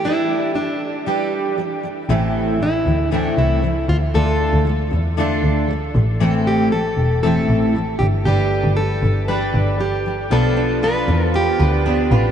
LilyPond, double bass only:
\new Staff \with { instrumentName = "Double bass" } { \clef bass \time 4/4 \key a \minor \tempo 4 = 117 r1 | a,,4. d,8. r16 c,4 d,8 | d,8. d,8. e,4 d,4 a,,8~ | a,,4. e,,8. r16 a,,4 g,,8 |
g,,8. g,,8. g,,4 g,,4. | b,,4. e,8. r16 d,4 a,,8 | }